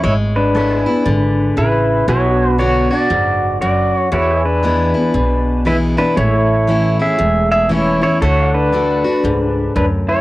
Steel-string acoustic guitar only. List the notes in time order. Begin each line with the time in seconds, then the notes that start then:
0.04 G#3
0.54 G#3 B3 E4
0.86 B3 E4
1.05 D3
1.57 C#3
2.08 B2
2.58 D3 B3 D4 F#4
2.90 D4 F#4
3.10 G#2
3.62 F#2
4.12 E2
4.63 E3 G#3 B3 E4
4.94 B3 E4
5.14 B2
5.65 E3 G#3 B3 E4
5.97 B3 E4
6.17 A2
6.67 E3 A3 C#4 E4
6.99 C#4 E4
7.19 E2
7.69 E3 A3 C#4 E4
8.01 C#4 E4
8.22 D3
8.72 D3 A3 D4 F#4
9.04 D4 F#4
9.25 G#2
9.76 F#2